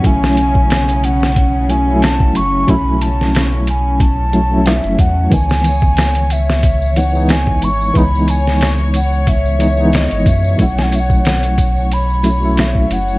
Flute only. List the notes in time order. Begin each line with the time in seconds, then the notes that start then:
0.06 G#5
1.05 F#5
1.70 G#5
2.03 A5
2.37 C#6
2.70 B5
3.02 A5
3.69 G#5
4.01 A5
4.67 E5
5.00 F#5
5.33 G#5
6.32 E5
6.97 F#5
7.31 G#5
7.64 C#6
7.97 B5
8.30 G#5
8.96 F#5
9.29 E5
9.95 D#5
10.28 E5
10.62 F#5
10.79 G#5
10.83 F#5
10.96 E5
11.00 F#5
11.93 B5
12.60 E5
12.93 F#5